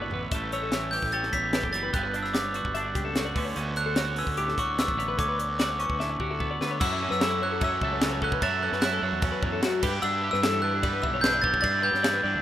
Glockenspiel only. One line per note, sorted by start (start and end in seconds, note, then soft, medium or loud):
0.53 0.95 E6 medium
0.91 1.13 G6 medium
1.13 1.34 A6 loud
1.33 1.75 B6 medium
1.73 1.94 A6 loud
1.93 2.25 F#6 loud
2.23 2.33 E6 medium
2.34 3.32 D6 medium
3.77 4.15 F#6 loud
4.19 4.27 E6 medium
4.37 4.58 D6 loud
4.59 4.79 C#6 medium
4.79 5.21 E6 loud
5.20 5.58 D6 medium
5.59 5.78 D6 medium
5.80 6.36 C#6 medium
6.80 7.09 E6 loud
7.12 7.43 E6 medium
7.43 7.52 F#6 medium
7.64 8.25 E6 medium
8.24 8.42 F#6 loud
8.43 8.63 A6 loud
8.63 8.80 F#6 medium
8.82 9.79 F#6 medium
10.02 10.30 E6 loud
10.31 10.63 E6 loud
10.62 11.04 F#6 loud
11.02 11.23 E6 medium
11.21 11.43 G6 loud
11.42 11.60 A6 loud
11.61 11.71 A6 loud
11.83 12.42 G6 loud